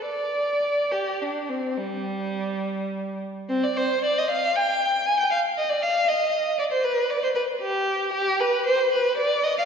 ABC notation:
X:1
M:12/8
L:1/16
Q:3/8=77
K:Gphr
V:1 name="Violin"
d6 G2 D2 C2 G,8- G,2 z2 | C d c2 d e f2 g4 a g f2 e d f2 e4 | d c =B2 d c B2 G4 G2 B2 c2 B2 d2 e f |]